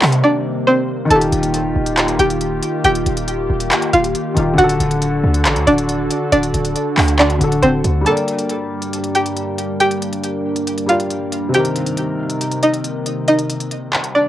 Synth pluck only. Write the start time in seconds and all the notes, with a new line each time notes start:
Already playing: D#4 D#5
0.24 D4 D5
0.67 C4 C5
1.10 A4 A5
2.19 G4 G5
2.85 G4 G5
3.93 F4 F5
4.58 F#4 F#5
5.67 D4 D5
6.32 D4 D5
7.19 D4 D5
7.62 C4 C5
8.06 A4 A5
9.15 G4 G5
9.80 G4 G5
10.89 F4 F5
11.54 G4 G5
12.63 D#4 D#5
13.28 D#4 D#5
14.15 D4 D5